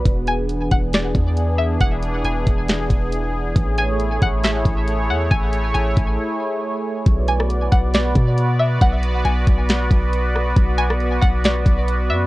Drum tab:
HH |x-x-x-x-x-x-x---|x-x-x-x-x-x-x---|x-x-x-x-x-x-x---|x-x-x-x---------|
SD |--------o-------|--------o-------|--------o-------|----------------|
BD |o-----o---o-----|o-----o---o-----|o-----o---o-----|o-----o---------|

HH |x-x-x-x-x-x-x---|x-x-x-x-x-x-x---|x-x-x-x-x-x-x---|
SD |---r----o-------|--------o-----r-|---r----o-------|
BD |o-----o---o-----|o-----o---o-----|o-----o---o-----|